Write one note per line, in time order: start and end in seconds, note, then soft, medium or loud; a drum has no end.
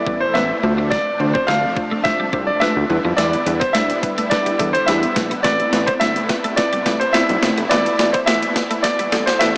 0.00 0.61 B2 medium
0.00 0.61 E3 medium
0.00 2.86 A3 medium
0.00 0.59 E4 medium
0.00 0.18 D5 loud
0.07 0.24 A1 medium
0.07 0.16 G3 medium
0.07 0.26 A3 medium
0.07 0.27 B3 medium
0.07 0.27 E4 medium
0.07 0.27 B4 medium
0.07 kick medium
0.20 0.35 C5 medium
0.34 0.53 A1 medium
0.34 0.55 A3 medium
0.34 0.44 A3 medium
0.34 0.55 B3 medium
0.34 0.55 E4 medium
0.34 0.55 B4 loud
0.34 0.93 E5 loud
0.34 snare medium
0.63 0.99 D2 loud
0.63 2.88 C3 medium
0.63 2.88 F3 medium
0.63 1.09 A3 medium
0.63 2.87 D4 medium
0.63 1.09 D4 medium
0.63 1.09 F4 medium
0.63 1.10 C5 medium
0.63 muted clean electric guitar stroke soft
0.78 0.86 C4 medium
0.90 1.00 D4 medium
0.90 1.36 D5 loud
0.90 kick loud
0.90 snare medium
1.20 1.38 D2 loud
1.20 1.40 A3 medium
1.20 1.40 D4 medium
1.20 1.40 F4 medium
1.20 1.40 C5 medium
1.20 muted clean electric guitar stroke soft
1.34 1.43 C4 medium
1.34 1.48 C5 medium
1.34 kick medium
1.47 1.66 D2 medium
1.47 1.68 A3 medium
1.47 1.57 A3 medium
1.47 1.68 D4 medium
1.47 1.68 F4 medium
1.47 1.68 C5 medium
1.47 2.00 F5 loud
1.47 snare medium
1.76 1.96 A3 medium
1.76 1.96 D4 medium
1.76 1.96 F4 medium
1.76 1.96 C5 medium
1.76 muted clean electric guitar stroke soft
1.76 kick medium
1.91 1.99 A3 medium
2.04 2.25 A3 medium
2.04 2.25 D4 medium
2.04 2.25 F4 medium
2.04 2.25 C5 loud
2.04 2.49 E5 loud
2.04 muted clean electric guitar stroke soft
2.04 kick medium
2.04 snare medium
2.20 2.28 G3 medium
2.33 2.51 C2 medium
2.33 2.42 G3 medium
2.33 2.53 A3 medium
2.33 2.53 D4 medium
2.33 2.53 F4 medium
2.33 2.53 C5 medium
2.33 kick medium
2.47 2.61 D5 medium
2.60 2.81 A3 medium
2.60 2.70 A3 medium
2.60 2.81 D4 medium
2.60 2.81 F4 medium
2.60 2.81 B4 loud
2.60 3.13 E5 loud
2.60 snare medium
2.76 2.85 D2 medium
2.90 2.99 E2 loud
2.90 5.42 D3 medium
2.90 3.36 G3 medium
2.90 5.42 G3 medium
2.90 7.67 B3 medium
2.90 3.36 D4 medium
2.90 5.42 E4 medium
2.90 3.36 E4 medium
2.90 3.36 B4 medium
2.90 muted clean electric guitar stroke soft
3.05 3.13 F2 loud
3.05 3.12 B3 medium
3.17 3.36 E2 loud
3.17 3.27 E4 medium
3.17 3.62 D5 loud
3.17 snare medium
3.17 closed hi-hat medium
3.33 closed hi-hat soft
3.46 3.64 E2 medium
3.46 3.66 G3 medium
3.46 3.66 D4 medium
3.46 3.66 E4 medium
3.46 3.66 B4 medium
3.46 muted clean electric guitar stroke soft
3.46 closed hi-hat medium
3.60 3.69 B3 medium
3.60 3.74 C5 medium
3.60 kick loud
3.60 closed hi-hat soft
3.73 3.92 D2 medium
3.73 3.94 G3 medium
3.73 3.83 A3 medium
3.73 3.94 D4 medium
3.73 3.95 E4 medium
3.73 3.95 D5 medium
3.73 4.32 E5 loud
3.73 snare medium
3.73 closed hi-hat medium
3.90 closed hi-hat medium
4.03 4.23 G3 medium
4.03 4.23 D4 medium
4.03 4.23 E4 medium
4.03 4.23 B4 medium
4.03 muted clean electric guitar stroke soft
4.03 kick medium
4.03 closed hi-hat medium
4.18 4.26 A3 medium
4.18 closed hi-hat medium
4.30 4.51 G3 medium
4.30 4.51 D4 medium
4.30 4.51 E4 medium
4.30 4.51 B4 loud
4.30 4.75 D5 medium
4.30 muted clean electric guitar stroke soft
4.30 kick medium
4.30 snare medium
4.30 closed hi-hat loud
4.46 4.54 G3 medium
4.46 closed hi-hat soft
4.59 4.77 E2 loud
4.59 4.79 G3 medium
4.59 4.68 G3 medium
4.59 4.79 D4 medium
4.59 4.79 E4 medium
4.59 4.79 A4 medium
4.59 kick medium
4.59 closed hi-hat medium
4.73 4.86 C5 medium
4.73 closed hi-hat medium
4.86 5.06 E2 medium
4.86 5.08 G3 medium
4.86 4.97 A3 medium
4.86 5.08 D4 medium
4.86 5.08 E4 medium
4.86 5.08 G4 loud
4.86 5.45 E5 medium
4.86 snare medium
4.86 closed hi-hat medium
5.03 closed hi-hat soft
5.16 5.34 A#1 medium
5.16 5.36 G3 medium
5.16 5.36 D4 medium
5.16 5.36 E4 medium
5.16 5.36 B4 medium
5.16 muted clean electric guitar stroke soft
5.16 kick medium
5.16 snare medium
5.16 closed hi-hat medium
5.31 5.39 B3 medium
5.31 closed hi-hat medium
5.43 5.62 A1 loud
5.43 7.69 C3 medium
5.43 5.64 A3 loud
5.43 5.53 A3 medium
5.43 7.69 A3 medium
5.43 5.64 C4 medium
5.43 9.57 E4 medium
5.43 5.64 E4 medium
5.43 5.64 B4 loud
5.43 5.88 D5 loud
5.43 kick loud
5.43 snare medium
5.43 closed hi-hat medium
5.60 closed hi-hat soft
5.73 5.90 A1 medium
5.73 5.92 A3 medium
5.73 5.92 C4 medium
5.73 5.93 E4 medium
5.73 5.93 B4 medium
5.73 muted clean electric guitar stroke soft
5.73 snare medium
5.73 closed hi-hat medium
5.86 5.96 B3 medium
5.86 5.91 C5 medium
5.86 kick loud
5.86 closed hi-hat medium
6.00 6.19 G1 loud
6.00 6.21 A3 medium
6.00 6.10 A3 medium
6.00 6.21 C4 medium
6.00 6.21 E4 medium
6.00 6.21 C5 medium
6.00 6.59 E5 loud
6.00 snare medium
6.00 closed hi-hat medium
6.16 closed hi-hat medium
6.29 6.49 A3 medium
6.29 6.49 C4 medium
6.29 6.49 E4 medium
6.29 6.49 B4 medium
6.29 muted clean electric guitar stroke soft
6.29 kick medium
6.29 snare medium
6.29 closed hi-hat medium
6.44 6.52 A3 medium
6.44 closed hi-hat medium
6.56 6.77 A3 medium
6.56 6.77 C4 medium
6.56 6.77 E4 medium
6.56 6.78 B4 loud
6.56 6.97 D5 medium
6.56 muted clean electric guitar stroke soft
6.56 kick medium
6.56 snare medium
6.56 closed hi-hat loud
6.73 6.80 G3 medium
6.73 closed hi-hat soft
6.86 7.03 A1 medium
6.86 6.95 G3 medium
6.86 7.06 A3 medium
6.86 7.06 C4 medium
6.86 7.06 E4 medium
6.86 7.06 B4 medium
6.86 kick medium
6.86 snare medium
6.86 closed hi-hat medium
7.00 7.14 C5 medium
7.00 closed hi-hat medium
7.13 7.34 A3 medium
7.13 7.23 A3 medium
7.13 7.34 C4 medium
7.13 7.34 E4 medium
7.13 7.34 C5 loud
7.13 7.72 E5 loud
7.13 snare medium
7.13 closed hi-hat medium
7.29 7.38 B1 medium
7.29 closed hi-hat soft
7.42 7.52 F#1 loud
7.42 7.62 A3 medium
7.42 7.62 C4 medium
7.42 7.62 E4 medium
7.42 7.62 C5 medium
7.42 muted clean electric guitar stroke soft
7.42 snare loud
7.42 closed hi-hat medium
7.58 7.66 F1 loud
7.58 7.65 B3 medium
7.58 closed hi-hat medium
7.69 7.88 E1 loud
7.69 9.57 B2 medium
7.69 9.57 E3 medium
7.69 7.91 A3 loud
7.69 9.57 A3 medium
7.69 7.91 B3 medium
7.69 7.80 E4 medium
7.69 7.91 E4 medium
7.69 7.91 B4 loud
7.69 8.15 D5 loud
7.69 snare medium
7.69 closed hi-hat medium
7.86 closed hi-hat soft
7.99 8.17 E1 loud
7.99 8.19 A3 medium
7.99 8.19 B3 medium
7.99 8.19 E4 medium
7.99 8.19 D5 medium
7.99 muted clean electric guitar stroke soft
7.99 snare medium
7.99 closed hi-hat medium
8.13 8.22 B3 medium
8.13 8.18 C5 medium
8.13 kick loud
8.13 closed hi-hat soft
8.26 8.45 E1 loud
8.26 8.47 A3 medium
8.26 8.36 A3 medium
8.26 8.47 B3 medium
8.26 8.47 E4 medium
8.26 8.47 B4 medium
8.26 8.85 E5 medium
8.26 snare medium
8.26 closed hi-hat medium
8.43 closed hi-hat medium
8.56 8.75 A3 medium
8.56 8.76 B3 medium
8.56 8.76 E4 medium
8.56 8.76 B4 medium
8.56 muted clean electric guitar stroke soft
8.56 kick medium
8.56 snare loud
8.56 closed hi-hat medium
8.71 8.79 A3 medium
8.71 closed hi-hat medium
8.83 9.04 A3 medium
8.83 9.04 B3 medium
8.83 9.04 E4 medium
8.83 9.28 D5 loud
8.83 9.04 D5 loud
8.83 muted clean electric guitar stroke soft
8.83 kick medium
8.83 snare loud
8.83 closed hi-hat loud
8.99 9.07 G3 medium
8.99 closed hi-hat soft
9.12 9.30 A1 medium
9.12 9.21 G3 medium
9.12 9.32 A3 medium
9.12 9.32 B3 medium
9.12 9.32 E4 medium
9.12 9.32 A4 medium
9.12 kick medium
9.12 snare loud
9.12 closed hi-hat medium
9.26 9.40 C5 medium
9.26 snare loud
9.26 closed hi-hat medium
9.39 9.57 A1 medium
9.39 9.57 A3 medium
9.39 9.49 A3 medium
9.39 9.57 B3 medium
9.39 9.57 E4 medium
9.39 9.57 B4 loud
9.39 9.57 E5 loud
9.39 snare loud
9.39 closed hi-hat medium